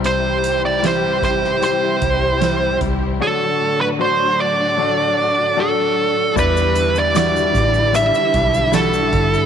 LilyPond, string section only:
\new Staff \with { instrumentName = "String section" } { \clef bass \time 4/4 \key e \minor \tempo 4 = 76 <c e g e' g'>1 | <a, d fis d' fis'>1 | <d e g d' e'>1 | }